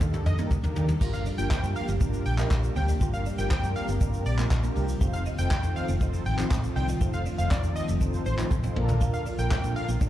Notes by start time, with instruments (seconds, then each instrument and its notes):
Already playing: analog synth pad D#3 G3 A#3 D4 A4
0.01 fingered electric bass D#2, analog polysynth A#3 D4 D#4 G4 A4, clean electric guitar D4, kick, mid tom, shaker
0.14 mid tom, shaker
0.26 fingered electric bass F2, digital synth lead D#5, muted clean electric guitar stroke, mid tom, shaker
0.38 analog polysynth A#3 D4 D#4 G4 A#4, clean electric guitar A#3, mid tom, shaker
0.51 muted clean electric guitar stroke, kick, floor tom, shaker
0.63 fingered electric bass D#2, analog polysynth A#3 D4 D#4 G4 A#4, clean electric guitar A#3, floor tom, shaker
0.76 fingered electric bass D#3, clean electric guitar G3, floor tom, shaker
0.89 floor tom, shaker
1.01 fingered electric bass G1, analog synth pad F3 G3 A#3 D4 G4, analog polysynth A#3 D4 F4 G4 A#4, clean electric guitar F4, kick, crash, shaker
1.13 digital synth lead F5, closed hi-hat, shaker
1.26 clean electric guitar D4, open hi-hat, shaker
1.38 fingered electric bass G1, analog polysynth A#3 D4 F4 G4 A#4, digital synth lead G5, muted clean electric guitar stroke, closed hi-hat, shaker
1.51 clean electric guitar C4, digital synth lead G5, kick, snare, clap, shaker
1.63 fingered electric bass G2, analog polysynth A#3 D4 F4 G4 A#4, muted clean electric guitar stroke, closed hi-hat, shaker
1.76 digital synth lead F5, open hi-hat, shaker
1.88 fingered electric bass G1, clean electric guitar A#3, closed hi-hat, shaker
2.01 fingered electric bass G1, analog polysynth A#3 D4 F4 G4 A#4, clean electric guitar D4, kick, shaker
2.13 muted clean electric guitar stroke, closed hi-hat, shaker
2.26 fingered electric bass A#1, digital synth lead G5, open hi-hat, shaker
2.38 analog polysynth A#3 D4 F4 G4 A#4, clean electric guitar A#3, clap, closed hi-hat, shaker
2.51 fingered electric bass A#1, muted clean electric guitar stroke, kick, snare, clap, shaker
2.63 analog polysynth A#3 D4 F4 G4 A#4, closed hi-hat, shaker
2.76 fingered electric bass D2, clean electric guitar C4, digital synth lead G5, open hi-hat, shaker
2.88 clean electric guitar D4, closed hi-hat, shaker
3.01 fingered electric bass G1, analog polysynth A#3 D4 F4 G4 A#4, analog synth pad C4, clean electric guitar F4, kick, shaker
3.13 digital synth lead F5, closed hi-hat, shaker
3.26 clean electric guitar D4, open hi-hat, shaker
3.38 fingered electric bass G1, analog polysynth A#3 D4 F4 G4 A#4, digital synth lead G5, muted clean electric guitar stroke, closed hi-hat, shaker
3.51 clean electric guitar C4, digital synth lead G5, kick, snare, clap, shaker
3.63 fingered electric bass G2, analog polysynth A#3 D4 F4 G4 A#4, muted clean electric guitar stroke, closed hi-hat, shaker
3.76 digital synth lead F5, open hi-hat, shaker
3.88 fingered electric bass G1, clean electric guitar A#3, closed hi-hat, shaker
4.01 fingered electric bass G1, analog polysynth A#3 D4 F4 G4 A#4, clean electric guitar D4, kick, shaker
4.14 closed hi-hat, shaker
4.26 fingered electric bass A#1, digital synth lead D5, muted clean electric guitar stroke, open hi-hat, shaker
4.38 analog polysynth A#3 D4 F4 G4 A#4, clean electric guitar A#3, clap, closed hi-hat, shaker
4.51 fingered electric bass A#1, kick, snare, clap, shaker
4.63 analog polysynth A#3 D4 F4 G4 A#4, clean electric guitar A#3, closed hi-hat, shaker
4.76 fingered electric bass C2, clean electric guitar G3, open hi-hat, shaker
4.88 closed hi-hat, shaker
5.01 fingered electric bass F1, analog synth pad D#3 A3 F4, analog polysynth C4 D#4 F4 A4 C5, clean electric guitar F4, kick, shaker
5.13 digital synth lead F5, closed hi-hat, shaker
5.26 clean electric guitar D#4, open hi-hat, shaker
5.38 fingered electric bass F1, analog polysynth C4 D#4 F4 A4 C5, digital synth lead G5, muted clean electric guitar stroke, closed hi-hat, shaker
5.51 clean electric guitar D4, digital synth lead G5, kick, snare, clap, shaker
5.63 fingered electric bass F2, analog polysynth C4 D#4 F4 A4 C5, muted clean electric guitar stroke, closed hi-hat, shaker
5.76 digital synth lead F5, open hi-hat, shaker
5.88 fingered electric bass F1, clean electric guitar C4, closed hi-hat, shaker
6.01 fingered electric bass F1, analog polysynth C4 D#4 F4 A4 C5, clean electric guitar D#4, kick, shaker
6.14 muted clean electric guitar stroke, closed hi-hat, shaker
6.26 fingered electric bass A1, digital synth lead G5, open hi-hat, shaker
6.38 analog polysynth C4 D#4 F4 A4 C5, clean electric guitar C4, clap, closed hi-hat, shaker
6.51 fingered electric bass A1, muted clean electric guitar stroke, kick, snare, clap, shaker
6.63 analog polysynth C4 D#4 F4 A4 C5, closed hi-hat, shaker
6.76 fingered electric bass C2, clean electric guitar D4, digital synth lead G5, open hi-hat, shaker
6.89 clean electric guitar D#4, closed hi-hat, shaker
7.01 fingered electric bass F1, analog polysynth C4 D#4 F4 A4 C5, clean electric guitar F4, kick, shaker
7.13 digital synth lead F5, closed hi-hat, shaker
7.26 clean electric guitar D4, open hi-hat, shaker
7.38 fingered electric bass F1, analog polysynth C4 D#4 F4 A4 C5, digital synth lead F5, muted clean electric guitar stroke, closed hi-hat, shaker
7.51 clean electric guitar C4, digital synth lead D5, muted fingered electric bass stroke, kick, snare, clap, shaker
7.63 fingered electric bass F2, analog polysynth C4 D#4 F4 A4 D5, muted clean electric guitar stroke, closed hi-hat, shaker
7.76 digital synth lead D#5, open hi-hat, shaker
7.88 fingered electric bass F1, clean electric guitar A3, closed hi-hat, shaker
8.01 fingered electric bass F1, analog polysynth C4 D#4 F4 A4 C5, clean electric guitar D4, kick, shaker
8.14 closed hi-hat, shaker
8.26 fingered electric bass A1, digital synth lead C5, muted clean electric guitar stroke, open hi-hat, shaker
8.38 analog polysynth C4 D#4 F4 A4 C5, clean electric guitar C4, clap, closed hi-hat, shaker
8.51 fingered electric bass A1, muted clean electric guitar stroke, kick, high tom, shaker
8.63 analog polysynth C4 D#4 F4 A4 C5, clean electric guitar C4, mid tom, shaker
8.76 fingered electric bass A#1, analog synth pad D3 A#3 F4, analog polysynth A#3 D4 F4 A4 A#4, clean electric guitar A#3, mid tom
8.89 floor tom, shaker
9.01 clean electric guitar F4, kick, shaker
9.14 digital synth lead F5, closed hi-hat, shaker
9.26 clean electric guitar D4, open hi-hat, shaker
9.38 fingered electric bass A#1, analog polysynth A#3 D4 F4 A4 A#4, digital synth lead G5, muted clean electric guitar stroke, closed hi-hat, shaker
9.51 clean electric guitar C4, digital synth lead G5, kick, snare, clap, shaker
9.64 fingered electric bass A#2, analog polysynth A#3 D4 F4 A4 A#4, muted clean electric guitar stroke, closed hi-hat, shaker
9.76 digital synth lead F5, open hi-hat, shaker
9.89 fingered electric bass A#1, clean electric guitar A#3, closed hi-hat, shaker
10.01 fingered electric bass A1, analog polysynth A#3 D4 F4 A4 A#4, clean electric guitar D4, kick, shaker